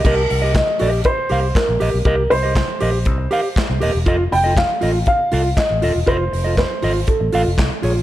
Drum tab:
CC |x-------|--------|--------|--------|
HH |-oxoxoxo|xoxoxoxo|xoxoxoxo|xoxoxoxo|
CP |--x---x-|--x---x-|--x---x-|--x---x-|
SD |--o---o-|--o---o-|--o---o-|--o---o-|
BD |o-o-o-o-|o-o-o-o-|o-o-o-o-|o-o-o-o-|